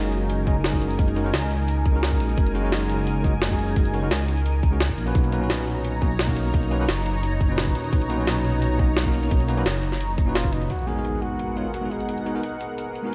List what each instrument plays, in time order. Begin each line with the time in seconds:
Already playing: detuned saw bass F#1, tine electric piano G#3 C#4 D#4 F#4 A#4, analog synth pad D#4 A#4 G#5
0.12 closed hi-hat
0.30 closed hi-hat
0.46 tine electric piano G#3 C#4 D#4 F#4 D#5, kick, closed hi-hat
0.64 snare, closed hi-hat
0.71 tine electric piano G#3 C#4 D#4 F#4, kick
0.75 tine electric piano G#4
0.82 detuned saw bass F#1, closed hi-hat
0.91 closed hi-hat
0.99 detuned saw bass F#1, kick, closed hi-hat
1.08 closed hi-hat
1.15 tine electric piano G#3 C#4 D#4 F#4 A#4, closed hi-hat
1.24 tine electric piano G#3 C#4 D#4 F#4 A#4
1.34 detuned saw bass C#2, snare, closed hi-hat
1.51 closed hi-hat
1.68 closed hi-hat
1.86 kick, closed hi-hat
1.92 tine electric piano G#3 C#4 D#4 F#4
1.97 tine electric piano A#4
2.03 snare, closed hi-hat
2.12 kick
2.20 detuned saw bass A#1, closed hi-hat
2.29 closed hi-hat
2.38 detuned saw bass F#1, kick, closed hi-hat
2.47 closed hi-hat
2.54 tine electric piano G#3 C#4 D#4 F#4 A#4, closed hi-hat
2.62 tine electric piano G#3 C#4 D#4 F#4
2.66 tine electric piano A#4
2.72 snare, closed hi-hat
2.90 closed hi-hat
3.07 closed hi-hat
3.23 tine electric piano G#3 C#4 D#4 F#4 D#5, kick, closed hi-hat
3.42 snare, closed hi-hat
3.48 tine electric piano G#3 C#4 D#4 F#4, kick
3.53 tine electric piano G#4
3.59 detuned saw bass F#1, closed hi-hat
3.68 closed hi-hat
3.76 detuned saw bass F#1, kick, closed hi-hat
3.85 closed hi-hat
3.93 tine electric piano G#3 C#4 D#4 F#4 A#4, closed hi-hat
4.02 tine electric piano G#3 C#4 D#4 F#4 A#4
4.11 detuned saw bass C#2, snare, closed hi-hat
4.28 closed hi-hat
4.37 closed hi-hat
4.46 closed hi-hat
4.63 kick, closed hi-hat
4.71 tine electric piano G#3 C#4 D#4 F#4 A#4
4.80 snare, closed hi-hat
4.89 kick
4.98 detuned saw bass A#1, closed hi-hat
5.06 tine electric piano A#3 C#4 D#4 F#4 B4, closed hi-hat
5.15 detuned saw bass B1, analog synth pad D#4 C#5 A#5, kick, closed hi-hat
5.24 closed hi-hat
5.31 tine electric piano A#3 C#4 D#4 F#4 B4, closed hi-hat
5.39 tine electric piano A#2 C#4 D#4 F#4
5.44 tine electric piano B4
5.50 snare, closed hi-hat
5.67 closed hi-hat
5.85 closed hi-hat
6.01 tine electric piano A#3 C#4 D#4 F#4 D#5, kick, closed hi-hat
6.19 snare, closed hi-hat
6.26 tine electric piano A#3 C#4 D#4 F#4, kick
6.30 tine electric piano A#4
6.36 detuned saw bass B1, closed hi-hat
6.46 closed hi-hat
6.54 detuned saw bass B1, kick, closed hi-hat
6.63 closed hi-hat
6.70 tine electric piano A#3 C#4 D#4 F#4 B4, closed hi-hat
6.79 tine electric piano A#3 C#4 D#4 F#4 B4
6.89 detuned saw bass F#1, snare, closed hi-hat
7.06 closed hi-hat
7.23 closed hi-hat
7.41 kick, closed hi-hat
7.47 tine electric piano A#2 C#4 D#4 F#4
7.52 tine electric piano B4
7.58 snare, closed hi-hat
7.67 kick
7.75 detuned saw bass D#2, closed hi-hat
7.84 closed hi-hat
7.93 detuned saw bass B1, kick, closed hi-hat
8.02 closed hi-hat
8.09 tine electric piano A#3 C#4 D#4 F#4 B4, closed hi-hat
8.17 tine electric piano A#2 C#4 D#4 F#4
8.21 tine electric piano B4
8.27 snare, closed hi-hat
8.45 closed hi-hat
8.62 closed hi-hat
8.78 tine electric piano A#3 C#4 D#4 F#4 D#5, kick, closed hi-hat
8.97 snare, closed hi-hat
9.04 tine electric piano A#3 C#4 D#4 F#4, kick
9.08 tine electric piano A#4
9.14 detuned saw bass B1, closed hi-hat
9.23 closed hi-hat
9.31 detuned saw bass B1, kick, closed hi-hat
9.40 closed hi-hat
9.48 tine electric piano A#3 C#4 D#4 F#4 B4, closed hi-hat
9.57 tine electric piano A#3 C#4 D#4 F#4 B4, closed hi-hat
9.66 detuned saw bass F#1, snare, closed hi-hat
9.83 closed hi-hat
9.92 snare, closed hi-hat
10.01 closed hi-hat
10.18 kick, closed hi-hat
10.25 tine electric piano A#2 C#4 D#4 F#4
10.29 tine electric piano B4
10.35 detuned saw bass F#1, flugelhorn F4, snare, closed hi-hat
10.44 kick
10.53 flugelhorn D#4, closed hi-hat
10.62 closed hi-hat
10.70 analog synth pad B3 G#4 A#4 F#5, flugelhorn F#4, closed hi-hat, impact
10.79 closed hi-hat
10.86 tine electric piano G#3 B3 D#4 F#4 A#4, flugelhorn G#4, closed hi-hat
10.94 tine electric piano G#3 B3 D#4 F#4
10.98 tine electric piano A#4
11.05 closed hi-hat
11.22 flugelhorn F#4, closed hi-hat
11.39 closed hi-hat
11.56 tine electric piano G#3 B3 D#4 F#4 C#5, flugelhorn F4, closed hi-hat
11.74 flugelhorn F#4, closed hi-hat
11.81 tine electric piano G#3 B3 D#4 F#4
11.85 tine electric piano G#4
11.91 flugelhorn D#4, closed hi-hat
12.00 closed hi-hat
12.09 closed hi-hat
12.18 closed hi-hat
12.25 tine electric piano G#3 B3 D#4 F#4 A#4, closed hi-hat
12.34 tine electric piano G#3 B3 D#4 F#4 A#4
12.43 closed hi-hat
12.61 closed hi-hat
12.78 closed hi-hat
12.95 closed hi-hat
13.02 tine electric piano G#3 B3 D#4 F#4
13.06 tine electric piano A#4